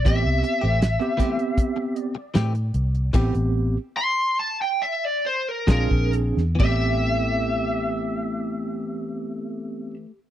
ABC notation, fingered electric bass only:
X:1
M:4/4
L:1/16
Q:1/4=70
K:Am
V:1 name="Fingered electric bass" clef=bass
A,,, C,, z A,,,2 z6 z A,,2 C,,2 | A,,, A,,,2 z8 z _B,,, B,,,2 E,, | A,,,16 |]